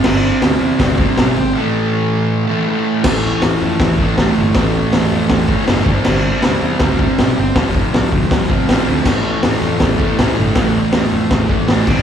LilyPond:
<<
  \new Staff \with { instrumentName = "Distorted electric guitar" } { \clef bass \time 4/4 \key a \minor \tempo 4 = 160 <c g c'>2 <c g c'>8 <c g c'>4 r8 | <a, e a>2~ <a, e a>8 <a, e a>8 <a, e a>4 | <a, e a>2~ <a, e a>8 <a, e a>8 <a, e a>4 | <a, e a>2~ <a, e a>8 <a, e a>8 <a, e a>8 <c g c'>8~ |
<c g c'>2 <c g c'>8 <c g c'>4 r8 | <f, c f>2~ <f, c f>8 <f, c f>8 <f, c f>4 | <a, e a>2~ <a, e a>8 <a, e a>8 <a, e a>4 | <a, e a>2~ <a, e a>8 <a, e a>8 <a, e a>8 <c g c'>8 | }
  \new Staff \with { instrumentName = "Picked electric bass" } { \clef bass \time 4/4 \key a \minor g,,4 d,8 e,8 d,4 b,,8 gis,,8 | r1 | a,,4 e,8 f,8 e,4 c,8 g,,8 | a,,4 e,8 f,8 e,4 fis,,8 g,,8 |
g,,4 d,8 e,8 d,4 b,,8 g,,8 | f,,4 c,8 d,8 c,4 a,,8 d,8 | a,,4 e,8 f,8 e,4 c,8 g,,8 | a,,4 e,8 f,8 e,4 a,,8 g,,8 | }
  \new DrumStaff \with { instrumentName = "Drums" } \drummode { \time 4/4 <cymc sn>4 <hho sn>4 <hho bd sn>8 bd8 <hho sn>4 | r4 r4 r4 r4 | <cymc bd sn>4 <hho sn>4 <hho bd sn>8 bd8 <hho sn>4 | <hho bd sn>4 <hho sn>4 <hho bd sn>8 bd8 <hho sn>8 bd8 |
<cymc sn>4 <hho sn>4 <hho bd sn>8 bd8 <hho sn>4 | <hho bd sn>8 bd8 <hho sn>8 bd8 <hho bd sn>8 bd8 <hho sn>4 | <cymc bd sn>4 <hho sn>4 <hho bd sn>8 bd8 <hho sn>4 | <hho bd sn>4 <hho sn>4 <hho bd sn>8 bd8 <hho sn>8 <cymc bd>8 | }
>>